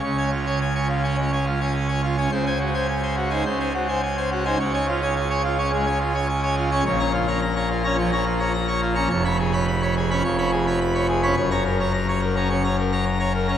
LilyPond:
<<
  \new Staff \with { instrumentName = "Pipe organ" } { \time 4/4 \key des \major \tempo 4 = 106 des''16 <des'' aes''>16 f'16 <des'' aes''>16 aes''16 <des'' aes''>16 f'16 <des'' aes''>16 des''16 <des'' aes''>16 f'16 <des'' aes''>16 aes''16 <des'' aes''>16 f'16 <des'' aes''>16 | c''16 <c'' aes''>16 ges'16 <c'' aes''>16 aes''16 <c'' aes''>16 ges'16 <c'' aes''>16 c''16 <c'' aes''>16 ges'16 <c'' aes''>16 aes''16 <c'' aes''>16 ges'16 <c'' aes''>16 | des''16 <des'' aes''>16 f'16 <des'' aes''>16 aes''16 <des'' aes''>16 f'16 <des'' aes''>16 des''16 <des'' aes''>16 f'16 <des'' aes''>16 aes''16 <des'' aes''>16 f'16 <des'' aes''>16 | des''16 <des'' bes''>16 f'16 <des'' bes''>16 bes''16 <des'' bes''>16 f'16 <des'' bes''>16 des''16 <des'' bes''>16 f'16 <des'' bes''>16 bes''16 <des'' bes''>16 f'16 <des'' bes''>16 |
\key fis \major cis''16 <cis'' b''>16 gis'16 <cis'' b''>16 b''16 <cis'' b''>16 gis'16 <cis'' b''>16 cis''16 <cis'' b''>16 gis'16 <cis'' b''>16 b''16 <cis'' b''>16 gis'16 <cis'' b''>16 | cis''16 <cis'' ais''>16 ais'16 <cis'' ais''>16 ais''16 <cis'' ais''>16 ais'16 <cis'' ais''>16 cis''16 <cis'' ais''>16 ais'16 <cis'' ais''>16 ais''16 <cis'' ais''>16 ais'16 <cis'' ais''>16 | }
  \new Staff \with { instrumentName = "Pipe organ" } { \clef bass \time 4/4 \key des \major << { des4.~ des16 des'16 aes16 r4. des'16 | des4.~ des16 ees'16 des4.~ des16 ees'16 | des4.~ des16 des'16 aes16 r4. des'16 | bes,4.~ bes,16 des'16 f16 r4. des'16 |
\key fis \major eis,4.~ eis,16 cis'16 eis,4.~ eis,16 cis'16 | fis,4.~ fis,16 cis'16 cis16 r4. cis'16 | } \\ { des,1 | des,2 des,2 | des,1 | bes,,1 |
eis,,2 eis,,2 | fis,,1 | } >> }
>>